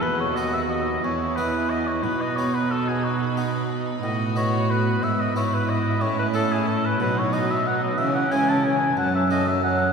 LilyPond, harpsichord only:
<<
  \new Staff \with { instrumentName = "Harpsichord" } { \time 6/8 \key b \mixolydian \tempo 4. = 60 r8 <b fis' b'>4 r8 <b e' gis'>4 | r8 <b dis' fis'>4. <b dis' fis'>4 | r8 <b fis' b'>4 r8 <b e' b'>4 | r8 <cis' e' a'>4 r8 <dis' fis'>4 |
r8 <gis cis' e'>4 r8 <a cis' fis'>4 | }
  \new Staff \with { instrumentName = "Harpsichord" } { \clef bass \time 6/8 \key b \mixolydian dis,4. e,4. | b,2. | a,4. gis,4. | a,4. b,4. |
cis4. fis,4. | }
>>